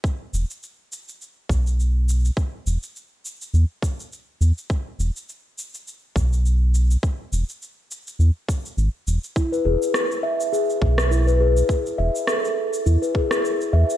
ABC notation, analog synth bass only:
X:1
M:4/4
L:1/8
Q:"Swing 16ths" 1/4=103
K:E
V:1 name="Analog synth bass" clef=bass
z E,,, z3 B,,,3 | z E,,, z2 E,, z2 E,, | z E,,, z3 B,,,3 | z E,,, z2 E,, z G,,, E,,, |
z E,,, z3 B,,,3 | z E,,, z2 E,, z2 E,, |]